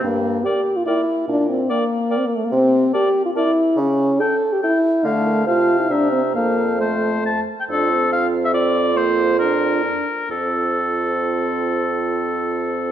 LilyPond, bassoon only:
\new Staff \with { instrumentName = "Bassoon" } { \clef bass \time 3/4 \key f \major \tempo 4 = 141 g,4 r2 | bes,4 r2 | c4 r2 | cis4 r2 |
d4 c4 c4 | f,2~ f,8 r8 | f,2.~ | f,2~ f,8 r8 |
f,2.~ | f,2. | }